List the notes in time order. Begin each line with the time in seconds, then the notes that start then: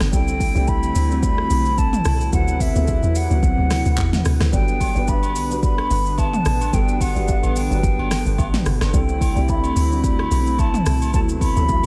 Already playing: F#3 G3 B3 D4 F#4 A4
0.00 G1, cross-stick, snare, shaker
0.11 C2 D3 G3 A3 C4 D4 E4 A4 G5, kick, shaker
0.28 shaker
0.40 kick, open hi-hat, shaker
0.54 C2 G3 C4 D4 E4 A4, shaker
0.67 B5, kick, shaker
0.83 shaker
0.95 D2, open hi-hat, shaker
1.09 G3 C4 D4 E4 F#4, shaker
1.23 B5, kick, shaker
1.38 cross-stick
1.50 B1, open hi-hat, shaker
1.65 shaker
1.78 A5, kick, shaker
1.93 mid tom, shaker
2.05 C2, cross-stick, open hi-hat, shaker
2.21 shaker
2.32 D2 C3 F#3 B3 C4 E4 A4 B4 F#5, kick, shaker
2.48 shaker
2.60 E5, kick, open hi-hat, shaker
2.74 D2 F#3 B3 C4 E4 G#4, shaker
2.84 A4, shaker
2.88 kick
3.03 E2, shaker
3.15 F#5, open hi-hat, shaker
3.29 D2 F#3 B3 C4 E4 F#4, shaker
3.43 C2, kick, shaker
3.58 D2
3.70 cross-stick, snare, open hi-hat, shaker
3.85 D2, shaker
3.98 E2, kick, clap, shaker
4.13 snare, mid tom, shaker
4.25 D2, cross-stick, open hi-hat, shaker
4.41 D2, cross-stick, snare, shaker
4.52 G1 D3 F#3 G3 B3 D4 A4 G5, kick, shaker
4.68 shaker
4.80 kick, open hi-hat, high agogo, shaker
4.95 G1 G3 B3 D4 F#4 B4, shaker
5.08 B5, kick, low woodblock, shaker
5.23 high agogo, shaker
5.36 B1, open hi-hat, shaker
5.49 G3 B3 D4 F#4 B4, shaker
5.63 B5, kick, shaker
5.78 cross-stick, high agogo
5.91 G1, open hi-hat, shaker
6.06 shaker
6.18 A5, kick, high agogo, low woodblock, shaker
6.33 mid tom, shaker
6.45 A1, cross-stick, open hi-hat, shaker
6.61 high agogo, shaker
6.72 G1 G3 B3 D4 F#4 A4 G5, kick, shaker
6.88 shaker
7.01 F#5, kick, open hi-hat, high agogo, shaker
7.14 G1 G3 B3 D4 F#4 G4, shaker
7.24 A4, shaker
7.28 kick, low woodblock
7.43 A1, high agogo, shaker
7.56 G5, open hi-hat, shaker
7.70 G1 F#3 G3 B3 D4 A#4, shaker
7.79 B4
7.83 F#1, kick, shaker
7.99 G1, high agogo
8.11 cross-stick, snare, open hi-hat, shaker
8.26 G1, shaker
8.38 A1, kick, high agogo, low woodblock, shaker
8.54 snare, mid tom, shaker
8.66 G1, cross-stick, open hi-hat, shaker
8.81 G1, cross-stick, snare, high agogo, shaker
8.92 C2 G3 A3 C4 D4 E4 A4 G5, kick, shaker
9.09 shaker
9.21 kick, open hi-hat, high agogo, shaker
9.35 C2 G3 C4 D4 E4 G4, shaker
9.48 B5, kick, low woodblock, shaker
9.64 high agogo, shaker
9.76 D2, open hi-hat, shaker
9.90 G3 C4 D4 E4 F#4, shaker
10.04 B5, kick, shaker
10.19 cross-stick, high agogo
10.31 B1, open hi-hat, shaker
10.46 shaker
10.58 A5, kick, high agogo, low woodblock, shaker
10.74 mid tom, shaker
10.86 C2, cross-stick, open hi-hat, shaker
11.02 high agogo, shaker
11.12 D2 C3 F#3 A3 B3 C4 E4 A4 A5, kick, shaker
11.29 shaker
11.41 B5, kick, open hi-hat, high agogo, shaker
11.55 D2 E3 B3 C4 E4 A4, shaker
11.62 F#3
11.68 kick, low woodblock, shaker